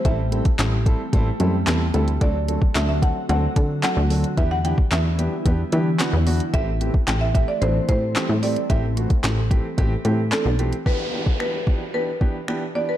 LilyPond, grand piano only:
\new Staff \with { instrumentName = "Grand piano" } { \time 4/4 \key e \minor \tempo 4 = 111 <g c' e' a'>16 r16 <g c' e' a'>16 r16 <g c' e' a'>16 r16 <g c' e' a'>16 r16 <g c' e' a'>16 r16 <g c' e' a'>16 r16 <g c' e' a'>16 r16 <g c' e' a'>16 r16 | <fis c' d' a'>16 r16 <fis c' d' a'>16 r16 <fis c' d' a'>16 r16 <fis c' d' a'>16 r16 <fis c' d' a'>16 r16 <fis c' d' a'>16 r16 <fis c' d' a'>16 r16 <fis c' d' a'>16 r16 | <e b d' g'>16 r16 <e b d' g'>16 r16 <e b d' e'>16 r16 <e b d' g'>16 r16 <e b d' g'>16 r16 <e b d' g'>16 r16 <e b d' fis'>16 r16 <e b d' fis'>16 r16 | <e a c' g'>16 r16 <e a c' g'>16 r16 <e a c' g'>16 r16 <e a c' g'>16 r16 <e a c' d'>16 r16 <e a c' g'>16 r16 <e a c' g'>16 r16 <e a c' g'>16 r16 |
<e a c' g'>16 r16 <e a c' fis'>16 r16 <e a c' g'>16 r16 <e a c' g'>16 r16 <e a c' g'>16 r16 <e a c' g'>16 r16 <e a c' d'>16 r16 <e a c' g'>16 r16 | <e b d' g'>16 r16 <e b d' g'>16 r16 <e b d' g'>16 r16 <e b d' g'>16 r16 <e b d' g'>16 r16 <e b d' g'>16 r16 <e b d' g'>16 r16 <e b d' g'>16 r16 | }